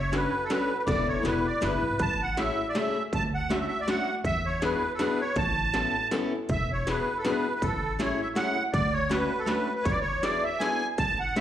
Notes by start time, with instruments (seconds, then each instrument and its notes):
Already playing: upright bass F#1
0.00 accordion C#5
0.12 steel-string acoustic guitar C#4 D4 F#4 A4, accordion B4, snare, closed hi-hat
0.44 accordion A4
0.50 steel-string acoustic guitar C#4 D4 F#4 A4, accordion B4, snare, closed hi-hat
0.79 accordion B4
0.86 upright bass E1, steel-string acoustic guitar B3 D4 E4 A4, accordion D5, kick, closed hi-hat
1.08 accordion C#5
1.23 upright bass E1, steel-string acoustic guitar B3 D4 E4 G#4, accordion B4, snare, closed hi-hat
1.46 accordion D5
1.61 upright bass F#1, steel-string acoustic guitar B3 D4 E4 G#4, accordion B4, snare, closed hi-hat
1.82 upright bass G#1
1.99 upright bass A1, accordion A5, kick, closed hi-hat
2.22 accordion F#5
2.37 steel-string acoustic guitar A3 C#4 E4 G#4, accordion E5, snare, closed hi-hat
2.69 accordion D5
2.75 steel-string acoustic guitar A3 C#4 E4 G#4, accordion E5, snare, closed hi-hat
3.13 upright bass D2, accordion A5, kick, closed hi-hat
3.35 accordion F#5
3.49 steel-string acoustic guitar A3 C#4 D4 F#4, accordion E5, snare, closed hi-hat
3.59 accordion E5
3.68 accordion E5
3.81 accordion D5
3.87 steel-string acoustic guitar A3 C#4 D4 F#4, accordion F#5, snare, closed hi-hat
4.24 upright bass E2, accordion E5, kick, closed hi-hat
4.46 accordion C#5
4.61 steel-string acoustic guitar B3 D4 E4 G#4, accordion B4, snare, closed hi-hat
4.94 accordion A4
4.99 steel-string acoustic guitar B3 D4 E4 G#4, accordion B4, snare, closed hi-hat
5.21 accordion C#5
5.36 upright bass A1, accordion A5, kick, closed hi-hat
5.74 steel-string acoustic guitar B3 C#4 E4 A4, snare, closed hi-hat
6.11 steel-string acoustic guitar B3 C#4 E4 A4, snare, closed hi-hat
6.49 upright bass E1, accordion E5, kick, closed hi-hat
6.72 accordion C#5
6.87 steel-string acoustic guitar B3 D4 E4 G#4, accordion B4, snare, closed hi-hat
7.18 accordion A4
7.25 steel-string acoustic guitar B3 D4 E4 G#4, accordion B4, snare, closed hi-hat
7.55 accordion B4
7.62 upright bass A1, accordion A4, kick, closed hi-hat
7.99 steel-string acoustic guitar A3 C#4 E4 G#4, accordion C#5, snare, closed hi-hat
8.21 accordion E5
8.35 steel-string acoustic guitar A3 C#4 E4 G#4, accordion F#5, snare, closed hi-hat
8.73 upright bass D2, accordion D5, kick, closed hi-hat
8.93 accordion C#5
9.09 steel-string acoustic guitar A3 C#4 D4 F#4, accordion B4, snare, closed hi-hat
9.39 accordion A4
9.46 steel-string acoustic guitar A3 C#4 D4 F#4, accordion B4, snare, closed hi-hat
9.75 accordion B4
9.84 upright bass E2, accordion C#5, kick, closed hi-hat
9.91 accordion D5
10.01 accordion C#5
10.22 steel-string acoustic guitar B3 D4 E4 G#4, accordion D5, snare, closed hi-hat
10.44 accordion E5
10.59 steel-string acoustic guitar B3 D4 E4 G#4, accordion G#5, snare, closed hi-hat
10.98 upright bass A1, accordion A5, kick, closed hi-hat
11.20 accordion F#5
11.36 steel-string acoustic guitar A3 C#4 E4 G#4, accordion E5, snare, closed hi-hat